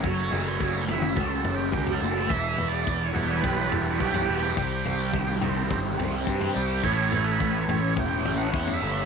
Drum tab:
T2 |-------o----o---|----------------|----------------|----------------|
FT |o-o---o-o-o--o--|o-o---o-o-o--o--|o-o---o-o-o--o--|o-o---o-o-o--o--|
BD |o---o---o---o---|o---o---o---o---|o---o---o---o---|o---o---o---o---|